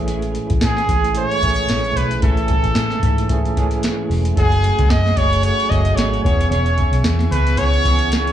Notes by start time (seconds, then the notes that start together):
Already playing: A1 E3 A3 C#4 G#4
0.07 A2 E3 G#3 C#4 E4, closed hi-hat
0.22 closed hi-hat
0.35 closed hi-hat
0.50 A1, kick, closed hi-hat
0.61 A2 G#4, snare, closed hi-hat
0.75 C#4 E4, snare, closed hi-hat
0.88 A1 E3 G#3 C#4 E4, kick, closed hi-hat
1.04 closed hi-hat
1.14 E3 A3 C#4 G#4 C#5, closed hi-hat
1.31 closed hi-hat
1.41 A1 E3 G#3 A3 C#4 G#4, kick, closed hi-hat
1.45 E4
1.56 closed hi-hat
1.68 A1 E3 G#3 C#4 E4, snare, closed hi-hat
1.84 closed hi-hat
1.96 B1 E3 G#3 C#4 E4 B4, closed hi-hat
2.11 closed hi-hat
2.22 A1 A2 E3 A3 C#4 E4 A4 G#5, kick, closed hi-hat
2.37 closed hi-hat
2.48 kick, closed hi-hat
2.64 A1, closed hi-hat
2.75 A2, snare, closed hi-hat
2.90 G#3 C#4 E4, snare, closed hi-hat
3.02 G#2 E3 C#4 E4, kick, closed hi-hat
3.18 closed hi-hat
3.29 E3 A3 C#4 G#4, kick, closed hi-hat
3.45 closed hi-hat
3.55 E3 G#3 C#4 E4 G#4 A4, kick, closed hi-hat
3.71 closed hi-hat
3.82 E3 G#3 C#4 E4, snare, closed hi-hat
4.09 E1 E3 G#3 C#4 E4, open hi-hat
4.25 closed hi-hat
4.37 F#1 F#3 A3 C#4 G#4 F#5 G#5, kick, closed hi-hat
4.52 closed hi-hat
4.64 closed hi-hat
4.79 C#2, kick, closed hi-hat
4.90 F#2 D#5, snare, closed hi-hat
5.05 A3 C#4 G#4, snare, closed hi-hat
5.17 F#1 F#3 A3 C#4 C#5, kick, closed hi-hat
5.21 G#4
5.33 closed hi-hat
5.43 F#3 A3 C#4 G#4 C#5, closed hi-hat
5.60 closed hi-hat
5.69 F#1 F#3 A3 C#4 G#4 D#5, kick, closed hi-hat
5.73 G#4
5.85 closed hi-hat
5.95 G#1 F#3 A3 C#4 C#5, snare, closed hi-hat
6.00 G#4
6.14 closed hi-hat
6.23 E1 E3 B3 C#4 G#4 C#5 C#6, kick, closed hi-hat
6.27 G#4 E5
6.41 closed hi-hat
6.50 E1 E3 B3 C#4 G#4 C#5, closed hi-hat
6.66 closed hi-hat
6.78 kick, closed hi-hat
6.92 B1, closed hi-hat
7.04 E2, snare, closed hi-hat
7.18 B3 C#4 G#4, snare, closed hi-hat
7.31 C#2 E3 B3 C#4 G#4 B4, closed hi-hat
7.47 closed hi-hat
7.56 E3 B3 C#4 G#4 C#5, kick, closed hi-hat
7.74 closed hi-hat
7.84 E3 B3 C#4 G#4, kick, closed hi-hat
7.88 G#4
7.99 closed hi-hat
8.11 E3 B3 C#4 G#4, snare, closed hi-hat
8.27 closed hi-hat